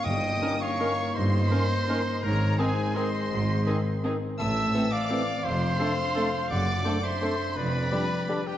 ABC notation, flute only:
X:1
M:3/4
L:1/8
Q:1/4=167
K:Ab
V:1 name="Flute"
g3 f3 | e6 | d2 c2 e2- | e4 z2 |
[K:Ddor] a3 f3 | f6 | ^f3 e3 | d4- d B |]